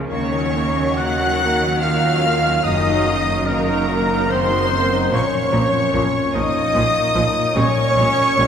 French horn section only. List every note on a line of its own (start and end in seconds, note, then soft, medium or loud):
0.13 0.96 C#4 medium
1.00 1.81 F#4 medium
1.82 2.66 F4 medium
2.63 3.46 D#4 loud
3.49 4.30 A#3 medium
4.29 5.11 C4 loud
5.11 6.31 C#4 loud
6.35 7.55 D#4 loud
7.53 8.47 C#4 loud